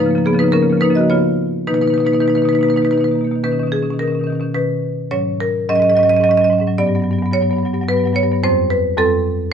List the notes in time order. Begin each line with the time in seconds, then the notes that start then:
Already playing: C#3 F3 D#4 B4
0.04 C#3 F3 A#3
0.10 A#3
0.15 C#3 F3 A#3
0.24 C#3 F3 A#3 B3 G#4
0.33 C#3 F3 A#3
0.39 A#3 D#4 B4
0.43 C#3 F3
0.48 A#3
0.52 C#3 F3 A#3 C#4 A#4
0.61 C#3 F3 A#3
0.70 C#3 F3 A#3
0.77 C#3 F3 A#3 B4
0.82 A#3 D#4
0.89 C#3 F3 A#3
0.95 F3 A#3 F#4 D#5
1.00 C#3
1.10 C#3 F3 B3 F4 C#5
1.67 B2 D#3 A#3 D#4 B4
1.74 B2 D#3 A#3 D#4 B4
1.81 A#3 D#4 B4
1.86 B2 D#3 B4
1.90 D#3 A#3 D#4 B4
1.96 B2 A#3 D#4
2.00 D#3 B4
2.05 B2 A#3 D#4 B4
2.11 D#3 A#3 D#4 B4
2.16 B2
2.20 D#3 A#3 D#4 B4
2.26 B2 D#3 A#3 D#4 B4
2.35 B2 D#3 A#3 D#4 B4
2.42 B2 D#3 A#3 D#4 B4
2.49 D#3 A#3 B4
2.53 B2 D#4 B4
2.59 D#3 A#3 D#4
2.63 B2 A#3 B4
2.68 D#3 D#4 B4
2.74 B2 D#3 A#3 D#4 B4
2.83 B2 D#3 A#3 D#4 B4
2.91 B2 D#3 A#3 D#4 B4
2.98 B2 A#3 D#4 B4
3.02 D#3 B4
3.08 B2 D#3 A#3
3.15 D#3 A#3
3.21 B2 A#3
3.28 B2 D#3 A#3
3.35 D#3
3.44 B2 D#3 C#4 B4
3.52 B2 D#3 C#4
3.59 D#3 C#4
3.63 B2 C#4
3.68 D#3 G#4
3.73 B2 D#3 C#4
3.83 B2 D#3 C#4
3.91 B2 D#3 C#4
3.99 B2 D#3 C#4 A#4
4.08 D#3 C#4
4.13 B2 C#4
4.19 B2 D#3
4.24 D#3 C#4
4.31 B2 C#4
4.35 D#3
4.40 B2 D#3 C#4
4.54 B2 D#3 C#4 B4
5.11 G#2 F#3 C#4 C#5
5.40 A#4
5.69 G#2 F#3 C#4 D#5
5.75 G#2 F#3 C#4 D#5
5.82 F#3 C#4 D#5
5.90 G#2 C#4 D#5
5.95 F#3 C#4 D#5
6.00 G#2 D#5
6.05 F#3 C#4
6.10 G#2 F#3 D#5
6.14 C#4 D#5
6.20 G#2 F#3 C#4 D#5
6.29 G#2 F#3 C#4 D#5
6.37 G#2 C#4 D#5
6.41 F#3 C#4 D#5
6.50 G#2 F#3 C#4
6.58 G#2 F#3 C#4
6.67 F#3 C#4
6.78 G2 F#3 B3 D5
6.87 G2 F#3 B3
6.95 F#3 B3
7.00 G2 B3
7.04 F#3
7.11 G2 F#3 B3
7.19 G2 F#3 B3
7.26 B3
7.31 G2 F#3 B3 C#5
7.41 G2 F#3 B3
7.49 G2 F#3 B3
7.57 F#3 B3
7.63 G2 F#3 B3
7.73 G2 F#3 B3
7.82 G2 F#3 B3
7.88 F#3 B3 B4
7.94 G2 F#3
8.00 B3
8.04 G2 F#3 B3
8.13 G2 F#3 B3 C#5
8.23 G2 F#3 B3
8.32 G2 F#3 B3
8.43 F2 G3 C4 C5
8.70 B4
8.97 F2 G3 C4 A4